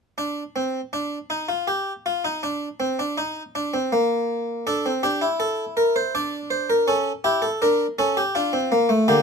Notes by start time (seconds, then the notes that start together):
0.18 D4
0.56 C4
0.93 D4
1.30 D#4
1.49 F4
1.68 G4
2.06 F4
2.25 D#4
2.43 D4
2.80 C4
2.99 D4
3.18 D#4
3.55 D4
3.74 C4
3.92 A#3
4.67 D4 A4
4.86 C4
5.03 D4 G4
5.22 E4
5.40 A4
5.77 A#4
5.96 C5
6.15 D4 D5
6.50 C5
6.70 A#4
6.88 C#4 A4
7.24 E4 G4
7.42 A4
7.62 D4 A#4
7.99 C#4 A4
8.17 G4
8.35 D4 F4
8.53 C4
8.72 A#3
8.89 A3
9.08 D3 A#3 G4